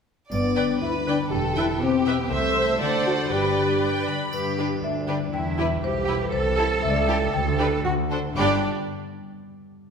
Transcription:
0.30 double bass section G1, harp G2, cello section G2, french horn section B3, violin section D5, triangle
0.56 harp D3, viola section B4 D5, violin section G5
0.81 cello section D2, harp B3, french horn section E4, violin section B4
1.07 harp D3, french horn section D4, viola section B4 D5, violin section G5
1.31 double bass section E1, harp E2, cello section E2, french horn section G4, violin section A4
1.56 harp B2, french horn section E4, viola section B4 E5, violin section G5
1.81 cello section B2, harp B3, french horn section C4, violin section G4
2.06 harp B2, viola section B4 E5, violin section G5
2.19 french horn section B3
2.30 double bass section C2, cello section C2, harp C3, french horn section A3, violin section C5 E5, viola section C5 E5
2.56 harp E4
2.79 double bass section D2, cello section D2, harp D3, french horn section D4, violin section A4 F#5, viola section C5 D5
3.06 french horn section F#4, harp F#4 C5
3.30 double bass section G1, harp G2, cello section G2, french horn section G4, violin section B4 G5, viola section B4 D5
3.57 harp D3
3.82 harp G3, violin section G5
4.07 harp D3, violin section B5
4.32 double bass section G2, harp G2, cello section G4, marimba B4, triangle
4.58 harp D3, viola section D4, violin section G4 B4
4.82 double bass section D2, harp G3, cello section D4, marimba E5
5.07 harp D3, viola section D4, violin section G4 B4, marimba D5
5.33 harp E2, double bass section E2, cello section E4, marimba G5
5.58 harp B2, viola section E4, violin section G4 B4, marimba E5
5.83 double bass section B1, harp G3, cello section G4, marimba C5
6.07 harp B2, viola section E4, violin section G4 B4
6.21 marimba B4
6.32 double bass section C2, harp C3, cello section A4, marimba C5
6.57 harp E4, viola section E4, violin section A4
6.82 double bass section C#2, harp C#3, marimba E5
6.90 marimba D5
6.96 marimba E5
7.08 viola section E4, harp E4 G4, violin section G4 A4
7.33 double bass section D2, harp D3, marimba G5
7.59 viola section D4, harp D4 G4, violin section G4 B4
7.84 double bass section D2, harp D3, cello section F#4, marimba F#5
8.11 viola section D4, harp D4 A4, violin section A4 C5
8.33 harp G2 G3
8.37 double bass section G1, cello section G2, harp B3 D4, viola section D4, violin section G4 D5, marimba B5
8.41 harp G4 D5

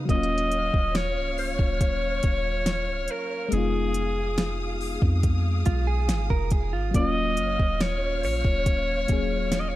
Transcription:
0.05 808-style bass D#1, fm electric piano F#3 A#3, string section C#5 F5 F6, kick, closed hi-hat
0.10 fm electric piano C#4, alto saxophone D#5
0.14 fm electric piano F4
0.23 closed hi-hat
0.38 closed hi-hat
0.52 closed hi-hat
0.74 808-style bass D#1, kick
0.95 alto saxophone C#5, snare, closed hi-hat
1.17 808-style bass C#1
1.38 alto saxophone C#5, open hi-hat
1.59 808-style bass D#1, kick
1.81 kick, closed hi-hat
2.23 808-style bass D#1, kick, closed hi-hat
2.66 snare, closed hi-hat
2.88 808-style bass C#1
3.08 alto saxophone A#4, closed hi-hat
3.49 808-style bass F1, fm electric piano G#3 B3, string section G#4 F5 D#6, closed hi-hat
3.53 fm electric piano D#4, alto saxophone G#4
3.58 fm electric piano F4
3.94 closed hi-hat
4.38 snare, closed hi-hat
4.81 open hi-hat
5.02 808-style bass F2, kick
5.23 kick, closed hi-hat
5.66 808-style bass B1, clean electric guitar F4, kick, closed hi-hat
5.87 clean electric guitar G#4
6.09 808-style bass G#1, snare, closed hi-hat
6.30 808-style bass F1, clean electric guitar A#4, kick
6.50 clean electric guitar G#4, kick, closed hi-hat
6.73 808-style bass G#1, clean electric guitar F4
6.91 808-style bass D#1, fm electric piano F#3 A#3, string section C#5 F5 F6, kick, closed hi-hat
6.96 fm electric piano C#4, alto saxophone D#5
7.00 fm electric piano F4
7.37 808-style bass F#1, closed hi-hat
7.59 808-style bass D#1, kick
7.80 alto saxophone C#5, snare, closed hi-hat
8.23 808-style bass A#1, alto saxophone C#5, open hi-hat
8.45 808-style bass D#1, kick
8.66 kick, closed hi-hat
9.08 808-style bass D#1, fm electric piano F#3 A#3 C#4, kick, closed hi-hat
9.12 fm electric piano G#4
9.52 snare, closed hi-hat
9.60 alto saxophone D#5
9.69 alto saxophone C#5

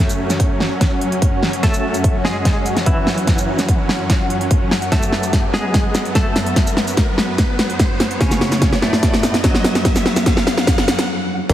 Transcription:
Already playing: supersaw synth F#2 F#3 C#4, clean electric guitar A3 A4, ambient pad C#4 F#4 C#5 F#5, riser
0.09 shaker
0.30 snare, closed hi-hat, shaker
0.40 kick, closed hi-hat
0.60 snare
0.81 kick, snare, closed hi-hat
1.01 closed hi-hat
1.12 closed hi-hat
1.22 kick, closed hi-hat
1.43 snare
1.53 closed hi-hat
1.63 clean electric guitar A3 A4, kick, snare, closed hi-hat
1.74 shaker
1.94 closed hi-hat, shaker
2.04 kick, closed hi-hat
2.25 clean electric guitar G#3 G#4, snare
2.45 kick, snare, closed hi-hat
2.66 closed hi-hat, shaker
2.77 snare, closed hi-hat
2.86 clean electric guitar E3 E4, kick, closed hi-hat
3.07 snare
3.18 closed hi-hat
3.27 kick, snare, closed hi-hat
3.38 shaker
3.59 snare, closed hi-hat, shaker
3.69 kick, closed hi-hat
3.89 snare
4.10 kick, snare, closed hi-hat
4.30 closed hi-hat
4.41 closed hi-hat
4.51 kick, closed hi-hat
4.71 snare
4.82 closed hi-hat
4.92 clean electric guitar A3 A4, supersaw synth B3, kick, snare, closed hi-hat
5.03 shaker
5.12 snare
5.23 closed hi-hat, shaker
5.33 kick, snare, closed hi-hat
5.54 clean electric guitar G#3 G#4, snare
5.74 kick, snare, closed hi-hat
5.95 snare, closed hi-hat, shaker
6.05 closed hi-hat
6.15 clean electric guitar A3 A4, kick, snare, closed hi-hat
6.36 snare, open hi-hat
6.46 closed hi-hat
6.56 kick, snare, closed hi-hat
6.67 shaker
6.77 snare
6.87 closed hi-hat, shaker
6.97 kick, snare, closed hi-hat
7.18 snare
7.38 kick, snare, closed hi-hat
7.59 snare, closed hi-hat
7.70 closed hi-hat
7.79 kick, snare, closed hi-hat
8.00 snare, open hi-hat
8.11 closed hi-hat
8.21 clean electric guitar C#3 C#4, kick, snare, closed hi-hat
8.31 snare, shaker
8.41 snare
8.52 snare, closed hi-hat, shaker
8.62 kick, snare, closed hi-hat
8.73 snare
8.82 clean electric guitar A2 A3, snare
8.93 snare
9.03 kick, snare, closed hi-hat
9.14 snare
9.23 snare, closed hi-hat, shaker
9.34 snare, closed hi-hat
9.44 clean electric guitar F#2 F#3, kick, snare, closed hi-hat
9.55 snare
9.64 snare, open hi-hat
9.75 snare, closed hi-hat
9.85 kick, snare, closed hi-hat
9.96 snare, shaker
10.06 snare
10.16 snare, closed hi-hat, shaker
10.26 kick, snare, closed hi-hat
10.37 snare
10.47 snare
10.58 snare
10.67 kick, snare, closed hi-hat
10.78 snare
10.88 snare, closed hi-hat
10.99 snare, closed hi-hat
11.49 wobble bass F#1, supersaw synth F#3 F#4 A4 C#5, kick, closed hi-hat, crash

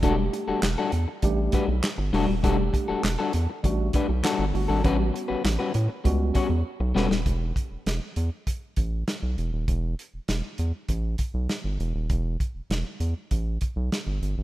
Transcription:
0.02 analog synth bass E1, tine electric piano G3 A3 D4 F#4, clean electric guitar G3 D4 F#4 A4, kick, closed hi-hat
0.10 tine electric piano G4
0.18 muted clean electric guitar stroke
0.33 muted clean electric guitar stroke, closed hi-hat
0.48 analog synth bass E1, clean electric guitar G3 D4 F#4 A4
0.62 analog synth bass E1, muted clean electric guitar stroke, snare, clap, closed hi-hat
0.78 clean electric guitar G3 D4 F#4 A4
0.92 analog synth bass E2, muted clean electric guitar stroke, closed hi-hat
1.08 muted clean electric guitar stroke
1.22 analog synth bass A1, tine electric piano G3 A3 D4 G4, muted clean electric guitar stroke, kick, closed hi-hat
1.52 clean electric guitar G3 D4 F#4 B4, kick, closed hi-hat
1.68 analog synth bass B1, muted clean electric guitar stroke
1.83 snare, clap, closed hi-hat
1.98 analog synth bass G1, muted clean electric guitar stroke
2.13 analog synth bass E1, tine electric piano G3 A3 D4 F#4, clean electric guitar G3 D4 F#4 A4, open hi-hat
2.28 analog synth bass D#1, muted clean electric guitar stroke
2.43 analog synth bass E1, clean electric guitar G3 D4 F#4 A4, tine electric piano G3 A3 D4 G4, kick, closed hi-hat
2.59 muted clean electric guitar stroke
2.73 muted clean electric guitar stroke, kick, closed hi-hat
2.88 analog synth bass E1, clean electric guitar G3 D4 F#4 A4
3.04 analog synth bass E1, muted clean electric guitar stroke, snare, clap, closed hi-hat
3.19 clean electric guitar G3 D4 F#4 A4
3.33 analog synth bass E2, muted clean electric guitar stroke, closed hi-hat
3.50 muted clean electric guitar stroke
3.63 analog synth bass A1, tine electric piano G3 A3 D4 F#4, muted clean electric guitar stroke, kick, closed hi-hat
3.93 clean electric guitar G3 D4 F#4 B4, kick, closed hi-hat
4.09 analog synth bass B1, muted clean electric guitar stroke
4.23 clean electric guitar G3 D4 F#4 A4, snare, clap, closed hi-hat
4.39 analog synth bass G1
4.54 analog synth bass G1, tine electric piano G3 A3 D4 F#4, muted clean electric guitar stroke, open hi-hat
4.68 analog synth bass G#1, clean electric guitar G3 D4 F#4 A4
4.84 analog synth bass A1, clean electric guitar G3 C#4 F#4 B4, tine electric piano G3 B3 C#4 F#4, kick, closed hi-hat
4.99 muted clean electric guitar stroke
5.13 muted clean electric guitar stroke, closed hi-hat
5.28 analog synth bass A1, clean electric guitar G3 C#4 F#4 B4
5.44 analog synth bass A1, muted clean electric guitar stroke, snare, clap, closed hi-hat
5.59 clean electric guitar G3 C#4 F#4 B4
5.74 analog synth bass A2, muted clean electric guitar stroke, closed hi-hat
5.89 muted clean electric guitar stroke
6.04 analog synth bass C#2, tine electric piano G3 B3 C#4 F#4, muted clean electric guitar stroke, kick, closed hi-hat
6.34 clean electric guitar G3 C#4 F#4 C#5, kick, closed hi-hat
6.49 analog synth bass E2, muted clean electric guitar stroke
6.80 analog synth bass B1, muted clean electric guitar stroke
6.95 analog synth bass E1, clean electric guitar G3 C#4 F#4 B4, tine electric piano G3 B3 C#4 A4, snare
7.10 analog synth bass D#1, muted clean electric guitar stroke, snare
7.26 analog synth bass E1, kick, closed hi-hat
7.56 kick, closed hi-hat
7.71 analog synth bass E1
7.86 analog synth bass E1, snare, closed hi-hat
8.16 analog synth bass E2, closed hi-hat
8.47 kick, closed hi-hat
8.76 analog synth bass A1, kick, closed hi-hat
9.08 snare, closed hi-hat
9.23 analog synth bass B1
9.38 analog synth bass E1, closed hi-hat
9.53 analog synth bass D#1
9.68 analog synth bass E1, kick, closed hi-hat
9.99 closed hi-hat
10.14 analog synth bass E1
10.28 analog synth bass E1, snare, closed hi-hat
10.58 analog synth bass E2, closed hi-hat
10.89 analog synth bass A1, kick, closed hi-hat
11.18 kick, closed hi-hat
11.34 analog synth bass B1
11.49 snare, closed hi-hat
11.64 analog synth bass G1
11.80 analog synth bass E1, closed hi-hat
11.94 analog synth bass D#1
12.10 analog synth bass E1, kick, closed hi-hat
12.40 kick, closed hi-hat
12.55 analog synth bass E1
12.70 analog synth bass E1, snare, closed hi-hat
13.00 analog synth bass E2, closed hi-hat
13.31 analog synth bass A1, kick, closed hi-hat
13.61 kick, closed hi-hat
13.76 analog synth bass B1
13.92 snare, closed hi-hat
14.07 analog synth bass G1
14.22 analog synth bass G1, closed hi-hat
14.38 analog synth bass G#1

